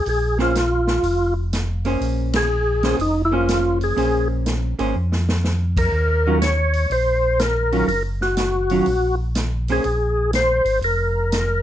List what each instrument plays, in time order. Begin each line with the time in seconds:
0.06 tonewheel organ A#1 G#4, open hi-hat
0.38 hollow-body jazz guitar A#3 C#4 G#4 C5, tonewheel organ F4, snare
0.55 snare, closed hi-hat
0.87 snare
1.03 tonewheel organ F1, open hi-hat
1.53 snare, closed hi-hat
1.85 hollow-body jazz guitar A#3 C#4 G#4 C5, open hi-hat
2.01 tonewheel organ A#1, open hi-hat
2.33 tonewheel organ G#4, snare, ride
2.83 hollow-body jazz guitar A#3 C#4 G#4 C5, snare, open hi-hat
2.99 tonewheel organ F1 D#4, open hi-hat
3.25 tonewheel organ E4
3.32 hollow-body jazz guitar A#3 C#4 G#4 C5, tonewheel organ F4
3.48 snare, closed hi-hat
3.81 tonewheel organ G#4, open hi-hat
3.96 tonewheel organ A#1, hollow-body jazz guitar A#3 C#4 G#4 C5, open hi-hat
4.46 snare, closed hi-hat
4.79 tonewheel organ G#1, hollow-body jazz guitar A#3 C#4 G#4 C5, open hi-hat
4.95 tonewheel organ F2
5.12 snare
5.29 snare
5.44 snare
5.77 tonewheel organ A#4, kick, crash
5.92 tonewheel organ D#2
6.27 hollow-body jazz guitar D#3 F#3 C#4 F4
6.42 tonewheel organ C#5, snare, closed hi-hat
6.73 open hi-hat
6.90 tonewheel organ A#1 C5, open hi-hat
7.39 tonewheel organ A#4, snare, closed hi-hat
7.72 hollow-body jazz guitar D#3 F#3 C#4 F4, open hi-hat
7.87 tonewheel organ F#1 A#4, open hi-hat
8.21 tonewheel organ F#4, snare
8.37 snare, closed hi-hat
8.70 hollow-body jazz guitar D#3 F#3 C#4 F4, open hi-hat
8.86 tonewheel organ A#1, open hi-hat
9.35 snare, closed hi-hat
9.68 hollow-body jazz guitar A#3 C#4 G#4 C5, tonewheel organ G#4, open hi-hat
9.84 tonewheel organ A#1, open hi-hat
10.33 tonewheel organ C5, snare, closed hi-hat
10.65 tonewheel organ G#1, open hi-hat
10.82 tonewheel organ F1 A#4, open hi-hat
11.32 snare, closed hi-hat